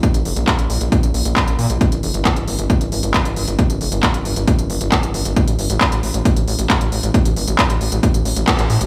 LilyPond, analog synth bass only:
\new Staff \with { instrumentName = "Analog synth bass" } { \clef bass \time 4/4 \key bes \lydian \tempo 4 = 135 r16 bes,,16 f,,16 bes,,16 r16 bes,,16 bes,,16 bes,,16 r16 bes,,16 bes,,16 bes,,16 r16 bes,,16 bes,16 bes,,16 | r16 g,,16 f,,16 g,,16 r16 g,,16 g,,16 g,,16 r16 g,,16 g,,16 g,,16 r16 g,,16 g,,16 g,,16 | r16 g,,16 f,,16 g,,16 r16 g,,16 g,,16 g,,16 r16 g,,16 g,,16 g,,16 r16 g,,16 g,,16 g,,16 | r16 a,,16 g,,16 a,,16 r16 a,,16 a,,16 a,,16 r16 a,,16 a,,16 a,,16 r16 a,,16 a,,16 a,,16 |
r16 a,,16 g,,16 a,,16 r16 a,,16 a,,16 a,,16 r16 a,,16 a,,16 a,,16 r16 a,,16 a,16 a,,16 | }